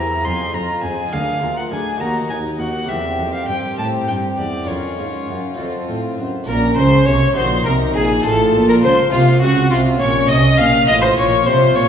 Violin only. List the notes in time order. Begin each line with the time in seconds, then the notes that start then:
Already playing: A#5
0.25 C6
0.54 A#5
0.83 G#5
1.13 F5
1.57 F#5
1.72 G#5
2.00 A#5
2.30 G#5
2.60 F#5
2.89 E5
3.34 F5
3.48 G5
3.78 A5
4.08 G5
4.38 D5
4.68 C#5
6.47 A#4
6.77 C5
7.06 C#5
7.36 C5
7.65 A#4
7.95 G#4
8.25 A4
8.69 A#4
8.83 C5
9.12 F4
9.42 F#4
9.71 F4
10.00 C#5
10.29 D#5
10.58 F5
10.88 D#5
11.02 C5
11.17 C#5
11.46 C5
11.75 C#5